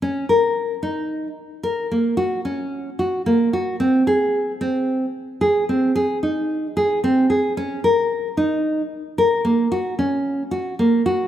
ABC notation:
X:1
M:7/4
L:1/8
Q:1/4=112
K:Ebdor
V:1 name="Nylon-string guitar"
D B2 E2 z B B, G D2 G B, G | C A2 C2 z A C A E2 A C A | D B2 E2 z B B, G D2 G B, G |]